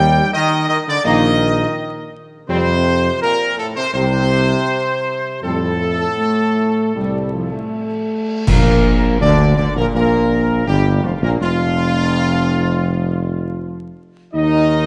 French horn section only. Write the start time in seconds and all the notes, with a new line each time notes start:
1.05 A#3 D#4
2.49 G3 C4
3.94 G3 C4
5.43 G3 C4
6.18 A3
6.96 G3
7.34 F3
7.52 A3
8.48 A#3
9.19 D4
9.56 D4
9.76 A#3
9.94 A#3
10.69 G3
11.04 F3
11.22 A#3
11.41 F3
14.34 D#4